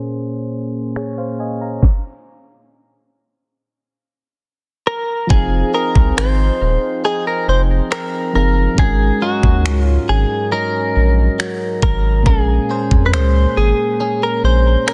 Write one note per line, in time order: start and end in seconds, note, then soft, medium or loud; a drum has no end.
0.00 1.76 A#2 medium
0.00 1.77 A#3 medium
0.00 1.79 C#4 medium
0.00 0.93 G#4 medium
0.00 0.94 C5 medium
0.96 1.17 G#4 soft
0.96 1.17 C#5 medium
0.96 finger snap loud
1.18 1.39 C5 medium
1.18 1.38 F5 medium
1.40 1.60 D#5 medium
1.40 1.60 G#5 medium
1.61 2.03 F5 medium
1.61 2.02 A#5 medium
1.83 kick medium
1.83 snare medium
4.87 5.30 A#4 medium
5.27 5.63 F1 loud
5.27 8.29 F3 medium
5.27 8.78 F3 medium
5.27 8.30 C4 medium
5.27 5.74 G#4 medium
5.27 kick loud
5.31 8.31 D#4 medium
5.31 8.32 G#4 medium
5.36 8.33 F5 medium
5.74 7.03 C4 medium
5.74 6.17 D#4 medium
5.74 7.05 G#4 medium
5.74 6.17 A#4 medium
5.95 6.12 C2 medium
5.95 kick medium
6.17 6.51 G#1 loud
6.17 7.05 D#4 medium
6.17 7.05 C5 medium
6.17 finger snap loud
6.61 6.77 D#1 medium
7.04 7.90 C4 medium
7.04 9.22 D#4 medium
7.04 7.25 G#4 medium
7.04 9.25 G#4 medium
7.27 7.49 A#4 medium
7.48 7.81 F1 loud
7.48 7.61 C5 medium
7.91 8.87 C4 medium
7.91 8.34 A#4 medium
7.91 finger snap loud
8.33 8.68 F#1 medium
8.33 8.77 F3 soft
8.33 8.78 C4 soft
8.33 8.79 D#4 soft
8.33 8.79 G#4 soft
8.33 8.79 A#4 medium
8.38 8.80 F5 medium
8.74 9.11 G#1 loud
8.74 12.20 G#2 medium
8.74 12.26 G#2 medium
8.74 12.21 G#3 medium
8.74 kick loud
8.79 12.22 C#4 medium
8.79 12.23 F#4 medium
8.79 9.23 G#4 medium
8.83 12.25 A#4 medium
9.22 10.51 F#3 medium
9.22 9.65 C#4 medium
9.22 10.52 D#4 medium
9.22 9.83 F#4 medium
9.43 9.67 D#2 medium
9.43 kick medium
9.65 9.98 C#2 medium
9.65 10.52 C#4 medium
9.65 finger snap loud
9.83 10.11 F4 medium
10.09 10.25 G#1 medium
10.09 10.52 G#4 medium
10.52 11.38 F#3 medium
10.52 12.69 C#4 medium
10.52 12.35 D#4 medium
10.52 11.82 A#4 loud
10.96 11.29 A#1 medium
11.39 12.26 F#3 medium
11.39 finger snap loud
11.82 12.27 G#1 medium
11.82 12.26 A#4 medium
11.82 kick medium
12.22 12.59 A#1 loud
12.22 14.94 A#2 medium
12.22 14.94 G#3 medium
12.22 14.94 A#3 medium
12.22 kick loud
12.27 14.94 A#3 medium
12.27 14.94 C#4 medium
12.27 13.06 G#4 medium
12.31 14.94 A#4 medium
12.70 13.99 C#4 medium
12.70 13.13 G#4 medium
12.70 14.03 C5 medium
12.91 13.15 F2 medium
12.91 kick medium
13.06 13.13 B4 medium
13.13 13.46 C#2 loud
13.13 14.00 G#4 medium
13.13 13.58 C5 loud
13.13 finger snap loud
13.57 13.73 G#1 medium
13.57 14.24 G#4 loud
14.00 14.86 C#4 medium
14.00 14.94 G#4 medium
14.23 14.44 A#4 medium
14.43 14.76 A#1 medium
14.43 14.88 C5 medium
14.87 14.94 C#4 medium
14.87 14.94 A#4 medium
14.87 finger snap loud